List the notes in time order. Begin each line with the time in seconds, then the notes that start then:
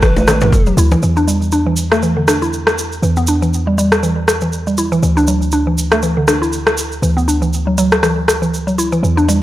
Already playing: A1
0.02 E3 B4, kick, cross-stick, cabasa
0.17 high bongo, high conga, cabasa
0.27 cross-stick, low bongo, high conga, low conga, cabasa
0.41 E3, mid tom, low bongo, cabasa
0.52 kick, low bongo, high conga, cabasa
0.66 F#3, cabasa
0.77 D2 E4, cabasa
0.91 E3, high bongo, cabasa
1.03 E2 E3, cabasa
1.17 D4, cabasa
1.27 G3, cabasa
1.42 cabasa
1.52 D4, cabasa
1.66 E3
1.77 cabasa
1.91 A3, cross-stick, cabasa
2.03 E3, cabasa
2.17 D3
2.28 D4, cross-stick, cabasa
2.42 E4, cabasa
2.53 cabasa
2.67 cross-stick, cabasa
2.78 cabasa
2.92 cabasa
3.02 E2 E3, cabasa
3.17 B3, cabasa
3.27 D4, cabasa
3.42 E3, cabasa
3.54 cabasa
3.67 G3
3.78 G3, cabasa
3.92 cross-stick, cabasa
4.03 E3, cabasa
4.28 cross-stick, cabasa
4.41 E3, cabasa
4.53 cabasa
4.67 G3, cabasa
4.78 E4, cabasa
4.92 E3, cabasa
5.03 D2 E3, cabasa
5.17 D4, cabasa
5.27 F#3, cabasa
5.42 cabasa
5.52 D4, cabasa
5.67 E3
5.78 cabasa
5.92 A3, cross-stick, cabasa
6.02 E3, cabasa
6.17 D3
6.28 D4, cross-stick, cabasa
6.42 E4, cabasa
6.53 cabasa
6.67 cross-stick, cabasa
6.77 cabasa
6.92 cabasa
7.02 D2 E3, cabasa
7.17 B3, cabasa
7.28 D4, cabasa
7.42 E3, cabasa
7.53 cabasa
7.67 F#3
7.78 F#3, cabasa
7.92 cross-stick, cabasa
8.03 E3, cross-stick, cabasa
8.28 cross-stick, cabasa
8.42 E3, cabasa
8.54 cabasa
8.67 F#3, cabasa
8.78 E4, cabasa
8.92 E3, cabasa
9.03 E2 E3, cabasa
9.17 D4, cabasa
9.28 G3, high bongo, cabasa